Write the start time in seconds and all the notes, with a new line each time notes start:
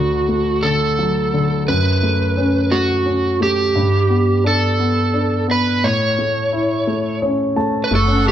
Already playing: D2 D3 F#4
0.29 A3
0.63 D3 A4
0.99 F#3
1.34 D3
1.68 F#2 B4
2.03 A3
2.37 C#4
2.72 A3 F#4
3.06 C#4
3.41 A3 G4
3.76 G2
4.10 B3
4.44 D4 A4
4.79 B3
5.14 D4
5.48 B3 B4
5.83 A2 C#5
6.19 A3
6.53 E4
6.87 A3
7.22 C#4 C#5
7.56 A3 A5
7.84 B4
7.91 F#1 A3 A4 F#5 C#6
7.95 A4
8.08 C#4
8.26 C#3 G4